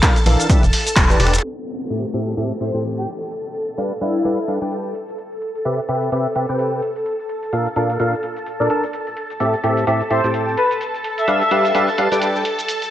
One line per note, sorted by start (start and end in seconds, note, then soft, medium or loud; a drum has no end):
0.00 0.17 A#2 medium
0.00 0.17 D4 medium
0.00 1.42 A4 medium
0.00 0.17 A4 medium
0.00 0.17 A#4 medium
0.00 0.17 F5 medium
0.00 1.42 A5 medium
0.00 kick loud
0.00 snare loud
0.00 clap loud
0.00 closed hi-hat medium
0.00 shaker medium
0.16 closed hi-hat soft
0.16 shaker soft
0.26 0.37 A#1 medium
0.26 0.47 E3 medium
0.26 0.47 D4 medium
0.26 0.47 A4 medium
0.26 0.47 A#4 medium
0.26 0.47 F5 loud
0.26 closed hi-hat medium
0.26 open hi-hat medium
0.40 closed hi-hat medium
0.40 shaker medium
0.50 0.64 E3 loud
0.50 0.64 D4 medium
0.50 0.64 G4 medium
0.50 0.64 B4 medium
0.50 0.64 E5 loud
0.50 kick loud
0.50 closed hi-hat medium
0.50 shaker medium
0.63 0.71 E1 medium
0.63 closed hi-hat soft
0.63 shaker soft
0.73 closed hi-hat medium
0.73 open hi-hat loud
0.87 closed hi-hat medium
0.87 closed hi-hat soft
0.87 shaker medium
0.96 1.15 E1 medium
0.96 kick loud
0.96 snare loud
0.96 clap loud
0.96 closed hi-hat medium
0.96 shaker medium
1.10 1.18 E3 medium
1.10 1.18 D4 medium
1.10 1.18 G4 medium
1.10 1.18 B4 medium
1.10 1.18 D5 loud
1.10 snare soft
1.10 closed hi-hat soft
1.10 shaker soft
1.20 1.39 E1 medium
1.20 1.34 D4 loud
1.20 1.34 G4 medium
1.20 1.34 B4 loud
1.20 1.34 A5 loud
1.20 snare medium
1.20 closed hi-hat medium
1.20 open hi-hat medium
1.27 snare medium
1.27 closed hi-hat medium
1.33 snare medium
1.33 closed hi-hat medium
1.33 shaker medium
1.38 snare medium
1.38 closed hi-hat medium
1.43 8.92 A4 medium
1.43 8.92 A5 medium
1.43 closed hi-hat medium
1.43 downlifter medium
1.67 closed hi-hat medium
1.80 closed hi-hat soft
1.80 shaker medium
1.90 2.05 A2 medium
1.90 2.05 C4 medium
1.90 2.05 G4 medium
1.90 2.05 A4 medium
1.90 2.05 E5 medium
1.90 closed hi-hat medium
1.90 shaker medium
2.04 closed hi-hat soft
2.14 2.35 A2 medium
2.14 2.35 C4 medium
2.14 2.35 G4 medium
2.14 2.35 A4 medium
2.14 2.35 E5 loud
2.14 closed hi-hat medium
2.27 closed hi-hat medium
2.37 2.52 A2 loud
2.37 2.52 C4 medium
2.37 2.52 G4 medium
2.37 2.52 A4 medium
2.37 2.52 E5 loud
2.37 closed hi-hat medium
2.51 closed hi-hat soft
2.60 2.71 A2 medium
2.60 2.71 C4 medium
2.60 2.71 G4 medium
2.60 2.71 A4 medium
2.60 2.73 C5 medium
2.60 2.71 E5 medium
2.60 closed hi-hat medium
2.74 3.06 A2 medium
2.74 3.06 C4 medium
2.74 3.06 G4 medium
2.74 3.06 A4 medium
2.74 3.06 G5 medium
2.74 closed hi-hat medium
2.74 shaker medium
2.84 closed hi-hat medium
2.97 3.07 G4 medium
3.07 closed hi-hat medium
3.21 closed hi-hat medium
3.21 shaker medium
3.31 closed hi-hat medium
3.31 shaker medium
3.44 closed hi-hat soft
3.54 closed hi-hat medium
3.68 closed hi-hat soft
3.68 shaker medium
3.78 3.92 G3 medium
3.78 3.92 D4 medium
3.78 3.92 G4 medium
3.78 3.92 B4 medium
3.78 3.92 F5 medium
3.78 closed hi-hat medium
3.78 shaker soft
3.91 closed hi-hat soft
3.91 shaker soft
4.01 4.22 G3 medium
4.01 4.22 D4 medium
4.01 4.48 E4 medium
4.01 4.22 G4 medium
4.01 4.22 B4 medium
4.01 4.22 F5 medium
4.01 closed hi-hat medium
4.15 closed hi-hat soft
4.15 shaker medium
4.25 4.39 G3 medium
4.25 4.39 D4 medium
4.25 4.39 G4 medium
4.25 4.39 B4 medium
4.25 4.39 F5 loud
4.25 closed hi-hat medium
4.25 shaker medium
4.38 closed hi-hat soft
4.38 shaker soft
4.48 4.58 G3 medium
4.48 4.58 D4 medium
4.48 4.58 G4 medium
4.48 4.58 B4 medium
4.48 4.58 F5 medium
4.48 closed hi-hat medium
4.62 4.94 G3 medium
4.62 4.94 D4 medium
4.62 4.94 G4 medium
4.62 4.94 B4 medium
4.62 4.94 G5 medium
4.62 closed hi-hat medium
4.62 shaker medium
4.71 closed hi-hat medium
4.71 shaker medium
4.86 shaker soft
4.95 closed hi-hat medium
5.08 closed hi-hat medium
5.08 shaker medium
5.18 closed hi-hat medium
5.18 shaker medium
5.32 closed hi-hat soft
5.32 shaker soft
5.42 closed hi-hat medium
5.55 closed hi-hat soft
5.55 shaker medium
5.65 5.80 C3 medium
5.65 5.80 C4 medium
5.65 5.80 G4 medium
5.65 5.80 B4 medium
5.65 5.80 E5 medium
5.65 closed hi-hat medium
5.65 shaker soft
5.79 closed hi-hat soft
5.79 shaker soft
5.89 6.10 C3 medium
5.89 6.10 C4 medium
5.89 6.10 G4 medium
5.89 6.10 B4 medium
5.89 6.10 E5 medium
5.89 closed hi-hat medium
6.02 closed hi-hat soft
6.02 shaker medium
6.12 6.27 C3 loud
6.12 6.27 C4 medium
6.12 6.27 G4 medium
6.12 6.27 B4 medium
6.12 6.27 E5 loud
6.12 closed hi-hat medium
6.12 shaker medium
6.26 closed hi-hat soft
6.26 shaker soft
6.36 6.46 C3 medium
6.36 6.46 C4 medium
6.36 6.46 G4 medium
6.36 6.46 B4 medium
6.36 6.46 E5 medium
6.36 closed hi-hat medium
6.49 6.81 C3 medium
6.49 6.81 C4 medium
6.49 6.81 G4 medium
6.49 6.81 B4 medium
6.49 6.81 G5 medium
6.49 closed hi-hat soft
6.49 shaker medium
6.59 closed hi-hat medium
6.59 shaker soft
6.73 shaker soft
6.82 closed hi-hat medium
6.96 closed hi-hat soft
6.96 shaker medium
7.06 closed hi-hat medium
7.06 shaker medium
7.19 closed hi-hat soft
7.19 shaker soft
7.29 closed hi-hat medium
7.43 closed hi-hat soft
7.43 shaker medium
7.53 7.67 A#2 medium
7.53 7.67 D4 medium
7.53 7.67 A4 medium
7.53 7.67 A#4 medium
7.53 7.67 F5 medium
7.53 closed hi-hat medium
7.53 shaker soft
7.66 closed hi-hat soft
7.66 shaker soft
7.76 7.97 A#2 medium
7.76 7.97 D4 medium
7.76 7.97 A4 medium
7.76 7.97 A#4 medium
7.76 7.97 F5 loud
7.76 closed hi-hat medium
7.90 closed hi-hat soft
7.90 shaker medium
8.00 8.14 A#2 medium
8.00 8.14 D4 medium
8.00 8.14 A4 medium
8.00 8.14 A#4 medium
8.00 8.14 F5 loud
8.00 closed hi-hat medium
8.00 shaker medium
8.13 closed hi-hat soft
8.13 shaker soft
8.23 closed hi-hat medium
8.37 closed hi-hat soft
8.37 shaker medium
8.46 closed hi-hat medium
8.46 shaker medium
8.60 8.68 A#2 medium
8.60 8.68 D4 medium
8.60 8.68 A4 medium
8.60 8.68 A#4 medium
8.60 8.68 D5 loud
8.60 shaker soft
8.70 8.84 D4 medium
8.70 8.84 A4 medium
8.70 8.84 A#4 medium
8.70 8.84 A5 loud
8.70 closed hi-hat medium
8.84 closed hi-hat soft
8.84 shaker medium
8.93 12.90 A4 medium
8.93 12.90 A5 medium
8.93 closed hi-hat medium
8.93 shaker medium
9.07 closed hi-hat soft
9.07 shaker soft
9.17 closed hi-hat medium
9.30 closed hi-hat soft
9.30 shaker medium
9.40 9.55 A2 medium
9.40 9.55 C4 medium
9.40 9.55 G4 medium
9.40 9.55 A4 medium
9.40 9.55 E5 medium
9.40 closed hi-hat medium
9.40 shaker medium
9.54 closed hi-hat soft
9.54 shaker soft
9.64 9.85 A2 medium
9.64 9.85 C4 medium
9.64 9.85 G4 medium
9.64 9.85 A4 medium
9.64 9.85 E5 loud
9.64 closed hi-hat medium
9.77 closed hi-hat soft
9.77 shaker medium
9.87 10.02 A2 loud
9.87 10.02 C4 medium
9.87 10.02 G4 medium
9.87 10.02 A4 medium
9.87 10.02 E5 loud
9.87 closed hi-hat medium
9.87 shaker medium
10.01 closed hi-hat soft
10.01 shaker soft
10.10 10.21 A2 medium
10.10 10.21 C4 medium
10.10 10.21 G4 medium
10.10 10.21 A4 medium
10.10 10.23 C5 medium
10.10 10.21 E5 medium
10.10 closed hi-hat medium
10.24 10.56 A2 medium
10.24 10.56 C4 medium
10.24 10.56 G4 medium
10.24 10.56 A4 medium
10.24 10.56 G5 medium
10.24 closed hi-hat soft
10.24 shaker medium
10.34 closed hi-hat medium
10.34 shaker medium
10.48 shaker soft
10.57 10.70 B4 medium
10.57 closed hi-hat medium
10.71 closed hi-hat soft
10.71 shaker medium
10.81 closed hi-hat medium
10.81 shaker medium
10.94 closed hi-hat soft
10.94 shaker soft
11.04 closed hi-hat medium
11.18 11.83 E5 medium
11.18 closed hi-hat soft
11.18 shaker medium
11.28 11.42 G3 medium
11.28 11.42 D4 medium
11.28 11.42 G4 medium
11.28 11.42 B4 medium
11.28 11.42 F5 medium
11.28 closed hi-hat medium
11.28 shaker medium
11.41 closed hi-hat soft
11.41 shaker soft
11.51 11.72 G3 medium
11.51 11.72 D4 medium
11.51 11.72 G4 medium
11.51 11.72 B4 medium
11.51 11.72 F5 medium
11.51 closed hi-hat medium
11.65 closed hi-hat soft
11.65 shaker medium
11.75 11.89 G3 medium
11.75 11.89 D4 medium
11.75 11.89 G4 medium
11.75 11.89 B4 medium
11.75 11.89 F5 loud
11.75 closed hi-hat medium
11.75 shaker medium
11.88 closed hi-hat soft
11.88 shaker soft
11.98 12.08 G3 medium
11.98 12.08 D4 medium
11.98 12.08 G4 medium
11.98 12.08 B4 medium
11.98 12.08 F5 medium
11.98 closed hi-hat medium
12.12 12.44 G3 medium
12.12 12.44 D4 medium
12.12 12.44 G4 medium
12.12 12.44 B4 medium
12.12 12.44 G5 medium
12.12 closed hi-hat soft
12.12 shaker medium
12.22 closed hi-hat medium
12.22 shaker medium
12.36 shaker soft
12.45 closed hi-hat medium
12.59 closed hi-hat soft
12.59 shaker medium
12.68 closed hi-hat medium
12.68 shaker medium
12.82 closed hi-hat soft
12.82 shaker soft